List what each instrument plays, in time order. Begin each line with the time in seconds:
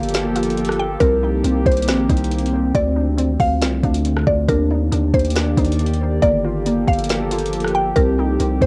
Already playing: 808-style bass G1, ambient pad F3 A#3 G4 A4, synth pluck A#3 F4 F5
0.03 closed hi-hat
0.09 closed hi-hat
0.14 synth pluck A#3, snare, closed hi-hat
0.35 synth pluck F4, closed hi-hat
0.43 closed hi-hat
0.50 closed hi-hat
0.57 closed hi-hat
0.65 closed hi-hat
0.69 cross-stick, closed hi-hat
0.79 synth pluck G5
1.00 808-style bass C2, ambient pad D#3 A#3 C4 G4, synth pluck C4 A#4, kick, closed hi-hat
1.23 synth pluck D#4
1.44 808-style bass C2, synth pluck C4, closed hi-hat
1.66 808-style bass C2, synth pluck C5, kick, closed hi-hat
1.72 closed hi-hat
1.77 closed hi-hat
1.82 closed hi-hat
1.88 808-style bass A#1, synth pluck C4, snare, closed hi-hat
2.09 808-style bass C2, synth pluck D#4, kick, closed hi-hat
2.17 closed hi-hat
2.24 closed hi-hat
2.31 closed hi-hat
2.39 closed hi-hat
2.46 closed hi-hat
2.75 808-style bass D2, ambient pad D3 A3 F4, synth pluck C4 D5, kick, closed hi-hat
2.96 synth pluck D4
3.18 synth pluck C4, closed hi-hat
3.40 808-style bass D2, synth pluck F5, kick, open hi-hat
3.61 808-style bass C2, synth pluck C4, snare, closed hi-hat
3.83 808-style bass D2, synth pluck D4, kick, closed hi-hat
3.94 closed hi-hat
4.05 closed hi-hat
4.17 cross-stick
4.27 808-style bass D2, synth pluck D5, kick
4.48 808-style bass D#2, ambient pad D#3 A#3 G4 D5, synth pluck D4 A#4, kick, closed hi-hat
4.71 synth pluck D#4
4.92 808-style bass D#2, synth pluck D4, closed hi-hat
5.14 808-style bass D#2, synth pluck C5, kick, closed hi-hat
5.19 closed hi-hat
5.25 closed hi-hat
5.30 closed hi-hat
5.35 synth pluck D4, snare, closed hi-hat
5.57 808-style bass D#2, synth pluck D#4, kick, closed hi-hat
5.65 closed hi-hat
5.72 closed hi-hat
5.79 closed hi-hat
5.86 closed hi-hat
5.94 closed hi-hat
6.22 808-style bass G1, ambient pad F3 A#3 G4 A4, synth pluck A#3 D5, kick, closed hi-hat
6.44 synth pluck F4
6.66 synth pluck A#3, closed hi-hat
6.88 808-style bass G1, synth pluck F5, kick, closed hi-hat
6.93 closed hi-hat
6.99 closed hi-hat
7.04 closed hi-hat
7.09 synth pluck A#3, snare, closed hi-hat
7.31 synth pluck F4, closed hi-hat
7.39 closed hi-hat
7.46 closed hi-hat
7.53 closed hi-hat
7.60 closed hi-hat
7.64 cross-stick, closed hi-hat
7.75 synth pluck G5
7.96 808-style bass C2, ambient pad D#3 A#3 C4, synth pluck C4 A#4, kick, closed hi-hat
8.19 synth pluck D#4
8.40 808-style bass C2, synth pluck C4, closed hi-hat
8.61 808-style bass C2, synth pluck C5, kick, closed hi-hat